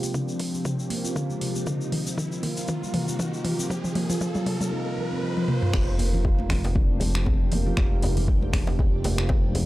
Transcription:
Already playing: F3 C4 G4, riser
0.03 A#3, open hi-hat, shaker
0.14 D4, kick, mid tom, shaker
0.28 shaker
0.39 F3, kick, open hi-hat
0.54 C4, shaker
0.65 F3, kick, mid tom, shaker
0.79 shaker
0.90 A#3, open hi-hat
1.05 F4, shaker
1.16 kick, mid tom, shaker
1.30 G#3, shaker
1.41 C3, open hi-hat
1.55 A#3, shaker
1.67 D#3 A#3 D#4 F4, kick, mid tom, shaker
1.81 shaker
1.92 F3, open hi-hat, mid tom
2.06 C4, shaker
2.18 F3, kick, mid tom, shaker
2.32 shaker
2.43 A#3, kick, open hi-hat, mid tom
2.57 F4, open hi-hat, shaker
2.68 kick, mid tom, shaker
2.83 G3, shaker
2.94 C3, open hi-hat, mid tom
3.08 A#3, shaker
3.19 D#4, kick, mid tom, shaker
3.34 shaker
3.45 F3, open hi-hat, mid tom
3.59 C4, shaker
3.70 F3, kick, mid tom, shaker
3.84 mid tom, shaker
3.95 A#3, open hi-hat, mid tom
4.10 F4, open hi-hat, mid tom, shaker
4.21 kick, mid tom, shaker
4.35 G3, mid tom, shaker
4.46 C3, kick, open hi-hat, mid tom
4.61 A#3, mid tom, shaker
4.72 D#4
4.98 F3
5.12 C4
5.23 F3
5.37 high tom
5.48 A#3, mid tom
5.62 F4, mid tom
5.73 F1 F3 C4 G4, finger snap, kick, crash, muted conga, djembe tone
5.99 A#3, open hi-hat, djembe tone
6.13 F4, muted conga, high conga, low conga
6.25 kick, djembe tone
6.39 G#3, muted conga, high conga
6.49 C3, finger snap, kick, open hi-hat, high conga, djembe tone, low conga
6.64 A#3, open hi-hat, muted conga, djembe slap
6.75 D4, kick, high conga, djembe tone
7.00 F3, open hi-hat, muted conga, djembe tone, high conga
7.15 C4, finger snap
7.26 F3, kick, muted conga, djembe tone
7.52 A#3, open hi-hat, muted conga, djembe tone, low conga
7.66 F4, high conga, low conga
7.77 F1 D4, finger snap, kick, muted conga, djembe tone
7.92 G#3
8.02 C3, open hi-hat, djembe tone
8.17 A#3, open hi-hat, muted conga, low conga
8.28 D4, kick, djembe tone
8.42 muted conga, high conga
8.53 F3, finger snap, kick, open hi-hat, djembe tone, high conga, low conga
8.67 C4, djembe slap, muted conga
8.79 F3, kick, djembe tone
9.04 A#3, open hi-hat, muted conga, djembe slap, djembe tone, high conga
9.18 F4, finger snap
9.29 kick, djembe slap, muted conga, djembe tone
9.44 G#3
9.55 C3, open hi-hat, muted conga, djembe tone

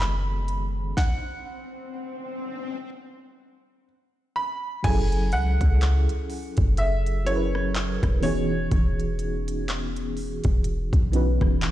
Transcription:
Already playing: F#1 D#3 G#3 B3 C#4, swell
0.00 B5, clap, closed hi-hat
0.48 closed hi-hat
0.97 F#5, kick, snare
4.36 B5
4.83 F#1 F#3 C#4 E4 G#4 G#5, kick, closed hi-hat, crash
4.87 A4
5.12 closed hi-hat
5.32 C#2 F#5, closed hi-hat
5.61 C#2, kick, closed hi-hat
5.81 clap, closed hi-hat
6.09 closed hi-hat
6.30 open hi-hat
6.57 F#1, kick, closed hi-hat
6.77 E5, closed hi-hat
7.06 closed hi-hat
7.25 F#3 C#4 E4 G#4 C#5, closed hi-hat
7.29 A#4
7.36 B4
7.55 cross-stick
7.75 clap, closed hi-hat
8.03 E1, kick, cross-stick, closed hi-hat
8.21 E3 B3 C#4 D#4 F#4 C#5, open hi-hat
8.26 G#4
8.71 E1, kick, closed hi-hat
9.00 closed hi-hat
9.19 closed hi-hat
9.48 closed hi-hat
9.68 clap, closed hi-hat
9.96 closed hi-hat
10.17 open hi-hat
10.44 E1, kick, closed hi-hat
10.64 closed hi-hat
10.93 B1, kick, closed hi-hat
11.12 E3 B3 C#4 D#4 F#4, closed hi-hat
11.16 B4
11.41 E1, kick, cross-stick
11.62 clap, closed hi-hat

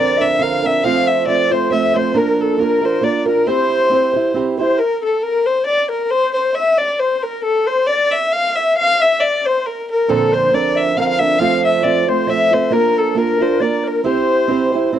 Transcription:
Already playing: D3 F3 C4 D4 D5
0.00 A#4
0.17 C4 D4 A#4 E5
0.23 D3
0.37 D3 C4 F5
0.41 D4 A#4 F5
0.62 D3 C4 D4 A#4 E5
0.81 F3 A3 C4 F5
0.86 F4
1.06 E5
1.22 D5 E5
1.27 F3 A3 C4 F4 D5
1.50 A3 C4 F4 C5
1.70 F3 A3 C4 F4 E5
1.94 A3 C4 F4 C5
2.14 A#3 D4 F4 A#4
2.39 A4
2.58 A#3 D4 F4 A#4
2.81 D4 F4 A#4 C5
3.01 A#3 D4 F4 A#4 D5
3.26 D4 F4 A#4
3.46 C4 E4 G4 C5
3.90 C4 E4 G4 C5
4.14 E4 G4 C5
4.34 C4 E4 G4 C5
4.58 E4 G4 C5
4.78 A#4
5.00 A4
5.04 A4
5.21 A#4
5.46 C5
5.64 D5
5.89 A#4
6.10 C5
6.33 C5
6.54 E5
6.78 D5
6.99 C5
7.23 A#4
7.43 A4
7.67 C5
7.87 D5
8.11 E5
8.30 F5
8.56 E5
8.75 F5
9.00 E5
9.20 D5
9.45 C5
9.66 A#4
9.90 A#4
10.08 A#2 D3 F3 C4 D4 A4 A#4
10.32 C5
10.52 D3 C4 D4 A#4 D5
10.75 E5
10.95 D3 C4 D4 A#4 F5
11.01 F5
11.08 F5
11.19 C4 D4 A#4 E5
11.23 D3
11.38 F3 A3 C4 F4 F5
11.65 E5
11.83 F3 A3 C4 F4 D5
12.02 D5
12.07 A3 C4 F4 C5
12.27 F3 A3 C4 F4 E5
12.51 A3 C4 F4 C5
12.70 A#3 D4 F4 A#4
12.98 A4
13.15 A#3 D4 F4 A#4
13.39 D4 F4 A#4 C5
13.60 A#3 D4 F4 A#4 D5
13.84 A#4
14.04 C4 E4 G4 C5
14.48 C4 E4 G4 C5
14.72 E4 G4 C5
14.93 C4 E4 G4 C5

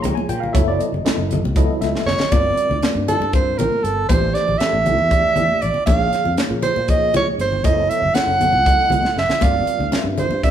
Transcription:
Already playing: F3 A#3 D#4 G#4 C#5
0.02 C#2 A#5, closed hi-hat, low conga
0.15 G#5, muted fretless electric bass stroke, high conga
0.29 A#2 G5, closed hi-hat, low conga
0.40 F5, low conga
0.53 F#1 F#3 B3 E4 A4 C#5 E5, kick, closed hi-hat, muted conga
0.68 D5
0.80 D#5, closed hi-hat
0.92 F#1, low conga
1.05 F#3 B3 E4 A4 D#5, muted fretless electric bass stroke, snare, closed hi-hat, high conga, low conga
1.18 F#1, low conga
1.31 closed hi-hat, low conga
1.43 C#2, muted conga
1.56 F#3 B3 E4 A4 D#5, kick, closed hi-hat
1.71 low conga
1.81 C#2 E5, snare, closed hi-hat, high conga
1.94 muted fretless electric bass stroke, snare, high conga
2.06 F#1 C#5 D#5, snare, low conga
2.19 muted fretless electric bass stroke, snare, low conga
2.31 G1 G3 C4 F4 A#4 D5, kick, closed hi-hat, muted conga
2.57 muted fretless electric bass stroke, closed hi-hat
2.70 D2, low conga
2.82 G3 C4 F4 A#4 D5, snare, closed hi-hat, high conga
2.95 G2
3.08 A4, closed hi-hat, low conga
3.20 G2, muted conga
3.33 G3 C4 F4 A#4 C5, kick, closed hi-hat, low conga
3.58 A#1 A#4, closed hi-hat, low conga
3.71 muted fretless electric bass stroke, high conga
3.83 G1 A4, closed hi-hat, low conga
4.09 A1 E3 A3 D4 G4 C5, kick, closed hi-hat, muted conga
4.34 D5, snare, closed hi-hat
4.48 A1, low conga
4.58 E3 A3 D4 G4 A4 E5, muted fretless electric bass stroke, snare, closed hi-hat, high conga
4.73 A1
4.86 closed hi-hat, low conga
4.98 E2, muted conga
5.11 E3 A3 D4 G4 D5, kick, closed hi-hat, low conga
5.36 E2, closed hi-hat, low conga
5.49 muted fretless electric bass stroke, high conga
5.62 A1 D5, closed hi-hat, low conga
5.74 muted fretless electric bass stroke, low conga
5.86 A#1 F3 A#3 D#4 G#4 C#5 F5, kick, closed hi-hat, muted conga
6.12 muted fretless electric bass stroke, snare, closed hi-hat
6.25 F2, low conga
6.38 F3 A#3 D#4 G#4 C#5, snare, closed hi-hat, high conga
6.50 A#2
6.63 C5, closed hi-hat, low conga
6.76 A#2, muted conga
6.88 F3 A#3 D#4 G#4 C#5 D#5, kick, closed hi-hat, low conga
7.14 C#2 C#5, closed hi-hat, low conga
7.27 muted fretless electric bass stroke, high conga
7.39 G1 C5, closed hi-hat, low conga
7.52 low conga
7.64 F#1 F#3 B3 E4 A4 C#5 D#5, kick, closed hi-hat, muted conga
7.90 E5, closed hi-hat
8.02 F#1, low conga
8.14 F#3 B3 E4 A4 C#5 F#5, muted fretless electric bass stroke, snare, closed hi-hat, high conga, low conga
8.27 F#1
8.41 closed hi-hat, low conga
8.52 C#2, muted conga
8.66 F#3 B3 E4 A4 D#5, kick, closed hi-hat
8.90 C#2, closed hi-hat, low conga
9.03 muted fretless electric bass stroke, snare, high conga
9.16 F#1 E5, snare
9.29 muted fretless electric bass stroke, snare, low conga
9.41 G1 G3 C4 F4 A#4 D5 F5, kick, closed hi-hat, muted conga
9.66 muted fretless electric bass stroke, closed hi-hat
9.79 D2, low conga
9.92 G3 C4 F4 A#4 E5, snare, closed hi-hat, high conga
10.04 G2
10.18 C5, closed hi-hat, low conga
10.30 G2, muted conga
10.43 G3 C4 F4 A#4 D5 E5, kick, closed hi-hat, low conga

